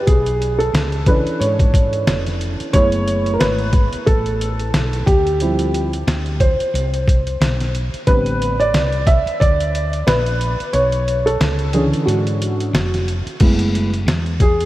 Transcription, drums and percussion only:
0.07 kick loud
0.07 closed hi-hat medium
0.26 closed hi-hat medium
0.42 closed hi-hat medium
0.60 closed hi-hat soft
0.74 snare loud
0.74 closed hi-hat medium
0.92 closed hi-hat soft
1.06 kick medium
1.06 closed hi-hat medium
1.27 closed hi-hat soft
1.42 closed hi-hat medium
1.59 kick medium
1.59 closed hi-hat medium
1.74 kick medium
1.74 closed hi-hat medium
1.93 closed hi-hat soft
2.07 snare loud
2.07 closed hi-hat medium
2.26 snare soft
2.26 closed hi-hat soft
2.41 closed hi-hat medium
2.60 closed hi-hat soft
2.74 kick loud
2.74 closed hi-hat medium
2.92 closed hi-hat medium
3.08 closed hi-hat medium
3.26 closed hi-hat soft
3.41 snare loud
3.41 closed hi-hat medium
3.58 closed hi-hat soft
3.73 kick medium
3.73 closed hi-hat medium
3.93 closed hi-hat soft
4.07 kick medium
4.07 closed hi-hat medium
4.26 closed hi-hat medium
4.41 closed hi-hat medium
4.59 closed hi-hat soft
4.74 snare loud
4.74 closed hi-hat loud
4.93 closed hi-hat soft
5.07 kick loud
5.07 closed hi-hat medium
5.27 closed hi-hat soft
5.40 closed hi-hat medium
5.59 closed hi-hat medium
5.74 closed hi-hat medium
5.93 closed hi-hat soft
6.08 snare loud
6.08 closed hi-hat medium
6.26 closed hi-hat soft
6.40 kick medium
6.40 closed hi-hat medium
6.60 closed hi-hat soft
6.75 closed hi-hat medium
6.94 closed hi-hat medium
7.08 kick medium
7.08 closed hi-hat medium
7.27 closed hi-hat medium
7.42 snare loud
7.42 closed hi-hat loud
7.61 snare soft
7.61 closed hi-hat soft
7.75 closed hi-hat medium
7.94 closed hi-hat soft
8.07 kick loud
8.07 closed hi-hat medium
8.26 closed hi-hat soft
8.42 closed hi-hat medium
8.60 closed hi-hat soft
8.74 snare loud
8.74 closed hi-hat medium
8.93 closed hi-hat soft
9.07 kick medium
9.07 closed hi-hat medium
9.27 closed hi-hat soft
9.41 kick loud
9.41 closed hi-hat medium
9.60 closed hi-hat medium
9.75 closed hi-hat medium
9.93 closed hi-hat soft
10.07 snare loud
10.07 closed hi-hat loud
10.26 closed hi-hat medium
10.41 closed hi-hat medium
10.60 closed hi-hat soft
10.73 closed hi-hat medium
10.92 closed hi-hat medium
11.08 closed hi-hat medium
11.27 closed hi-hat soft
11.41 snare loud
11.41 closed hi-hat medium
11.59 closed hi-hat soft
11.73 closed hi-hat medium
11.93 closed hi-hat soft
12.08 closed hi-hat medium
12.27 closed hi-hat medium
12.42 closed hi-hat medium
12.60 closed hi-hat medium
12.75 snare loud
12.75 closed hi-hat medium
12.94 snare soft
12.94 closed hi-hat medium
13.08 closed hi-hat medium
13.27 closed hi-hat soft
13.40 kick loud
13.40 closed hi-hat medium
13.40 crash medium
13.59 closed hi-hat medium
13.75 closed hi-hat medium
13.94 closed hi-hat soft
14.08 snare loud
14.08 closed hi-hat medium
14.26 closed hi-hat soft
14.40 kick medium
14.40 closed hi-hat medium
14.61 closed hi-hat soft

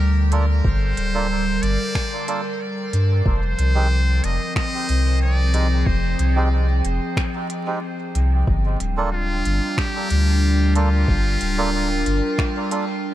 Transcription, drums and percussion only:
0.32 closed hi-hat soft
0.65 kick loud
0.97 closed hi-hat soft
1.63 closed hi-hat soft
1.95 finger snap medium
1.95 kick loud
2.28 closed hi-hat soft
2.93 closed hi-hat soft
3.26 kick loud
3.59 closed hi-hat soft
4.24 closed hi-hat soft
4.56 finger snap medium
4.56 kick loud
4.89 closed hi-hat soft
5.54 closed hi-hat soft
5.86 kick medium
6.19 closed hi-hat soft
6.85 closed hi-hat soft
7.17 finger snap medium
7.17 kick medium
7.50 closed hi-hat soft
8.15 closed hi-hat soft
8.47 kick medium
8.80 closed hi-hat soft
9.45 closed hi-hat soft
9.78 finger snap medium
9.78 kick medium
10.10 closed hi-hat soft
10.75 closed hi-hat soft
11.08 kick loud
11.41 closed hi-hat medium
12.06 closed hi-hat soft
12.38 finger snap medium
12.38 kick loud
12.71 closed hi-hat medium

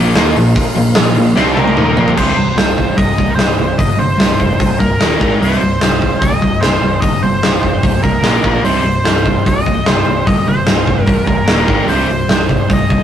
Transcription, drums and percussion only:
0.15 snare loud
0.15 open hi-hat medium
0.36 open hi-hat medium
0.56 kick loud
0.56 open hi-hat medium
0.75 open hi-hat medium
0.95 snare loud
0.95 open hi-hat medium
1.16 open hi-hat medium
1.36 snare medium
1.57 high tom medium
1.68 high tom medium
1.77 mid tom medium
1.97 floor tom loud
2.08 floor tom loud
2.17 kick loud
2.17 crash loud
2.58 snare loud
2.58 open hi-hat soft
2.78 kick medium
2.98 kick loud
2.98 open hi-hat medium
3.18 kick medium
3.39 snare loud
3.39 open hi-hat medium
3.79 kick loud
3.79 open hi-hat medium
4.20 snare loud
4.20 open hi-hat medium
4.40 kick medium
4.60 kick loud
4.60 open hi-hat medium
4.80 kick medium
5.01 snare loud
5.01 open hi-hat soft
5.21 kick loud
5.42 open hi-hat soft
5.81 snare loud
5.81 open hi-hat medium
6.02 kick medium
6.22 kick loud
6.22 open hi-hat soft
6.42 kick medium
6.63 snare loud
6.63 open hi-hat medium
7.02 kick loud
7.02 open hi-hat medium
7.43 snare loud
7.43 open hi-hat medium
7.63 kick medium
7.83 kick loud
7.83 open hi-hat medium
8.04 kick medium
8.24 snare loud
8.24 open hi-hat soft
8.44 kick loud
8.65 open hi-hat medium
9.05 snare loud
9.05 open hi-hat soft
9.26 kick medium
9.46 kick loud
9.46 open hi-hat medium
9.66 kick medium
9.86 snare loud
9.86 open hi-hat soft
10.27 kick loud
10.27 open hi-hat soft
10.67 snare loud
10.67 open hi-hat soft
10.87 kick medium
11.06 kick loud
11.06 open hi-hat medium
11.27 kick medium
11.48 snare loud
11.48 open hi-hat soft
11.68 kick loud
11.88 open hi-hat medium
12.29 snare medium
12.29 open hi-hat medium
12.49 kick medium
12.70 kick loud
12.70 open hi-hat soft
12.90 kick medium

